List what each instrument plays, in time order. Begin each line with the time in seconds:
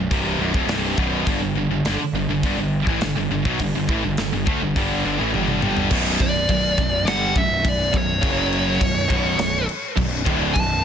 Already playing: distorted electric guitar B1 F#2
0.11 picked electric bass C1, distorted electric guitar C2 G2 C3, kick, open hi-hat
0.39 picked electric bass B0, distorted electric guitar B1 F#2
0.54 picked electric bass D1, distorted electric guitar D2 A2, kick
0.67 picked electric bass C1, distorted electric guitar C2 G2 C3, snare, open hi-hat
0.97 picked electric bass B0, distorted electric guitar B1 F#2 B2, kick
1.26 picked electric bass G1, distorted electric guitar G2 D3, kick, open hi-hat
1.40 picked electric bass G1, distorted electric guitar G2 D3
1.54 picked electric bass G1, distorted electric guitar G2 D3
1.69 picked electric bass G1, distorted electric guitar G2 D3
1.83 picked electric bass G1, distorted electric guitar G2 D3, snare, open hi-hat
1.99 muted picked electric bass stroke, muted distorted electric guitar stroke
2.13 picked electric bass G1, distorted electric guitar G2 D3
2.28 picked electric bass G1, distorted electric guitar G2 D3
2.43 picked electric bass G1, distorted electric guitar G2 D3, kick, open hi-hat
2.58 picked electric bass G1, distorted electric guitar G2 D3
2.87 picked electric bass A1, distorted electric guitar A2 E3, kick
3.00 picked electric bass G1, distorted electric guitar G2, snare, open hi-hat
3.05 distorted electric guitar D3
3.15 picked electric bass G1, distorted electric guitar G2 D3
3.30 picked electric bass G1, distorted electric guitar G2 D3
3.45 picked electric bass B1, distorted electric guitar B2 F#3, kick
3.59 picked electric bass G1, distorted electric guitar G2 D3, kick, open hi-hat
3.75 picked electric bass G1, distorted electric guitar G2 D3
3.88 picked electric bass A1, distorted electric guitar A2 E3, kick
4.04 picked electric bass G1, distorted electric guitar G2 D3
4.17 picked electric bass G1, distorted electric guitar G2 D3, snare, open hi-hat
4.32 picked electric bass G1, distorted electric guitar G2 D3
4.46 picked electric bass D2, distorted electric guitar D3 A3, kick
4.61 picked electric bass G1, distorted electric guitar G2 D3
4.76 picked electric bass G1, distorted electric guitar G2 D3 G3, kick, open hi-hat
5.04 picked electric bass G1, distorted electric guitar G2 D3
5.19 picked electric bass A1, distorted electric guitar A2 E3
5.33 picked electric bass G1, distorted electric guitar G2 D3 G3, high tom
5.48 mid tom
5.61 picked electric bass G1, distorted electric guitar G2 D3 G3, mid tom
5.77 floor tom
5.91 picked electric bass B0, distorted electric guitar B1 F#2 B2, kick, crash
6.20 picked electric bass B0, distorted electric guitar B1 F#2, lead electric guitar D5, kick, crash
6.49 picked electric bass B0, distorted electric guitar B1 F#2, kick, crash
6.78 picked electric bass B0, distorted electric guitar B1 F#2, kick, crash
7.06 picked electric bass G1, distorted electric guitar G2 D3 G3, lead electric guitar F#5, snare, crash
7.35 picked electric bass B0, distorted electric guitar B1 F#2, lead electric guitar E5, kick, crash
7.64 picked electric bass B0, distorted electric guitar B1 F#2, lead electric guitar D5, kick, crash
7.93 picked electric bass B0, distorted electric guitar B1 F#2, kick, crash
7.97 lead electric guitar C#5
8.21 picked electric bass F#1, distorted electric guitar F#2 C#3 F#3, kick, crash
8.53 crash
8.80 picked electric bass B0, distorted electric guitar B1 F#2, kick, crash
9.09 picked electric bass B0, distorted electric guitar B1 F#2 B2, kick, crash
9.38 picked electric bass B0, distorted electric guitar B1 F#2, snare, crash
9.69 crash
9.97 picked electric bass B0, distorted electric guitar B1 F#2, kick, crash
10.25 picked electric bass D1, distorted electric guitar D2 A2 D3, kick, crash
10.54 picked electric bass B0, distorted electric guitar B1 F#2, lead electric guitar A5, kick, crash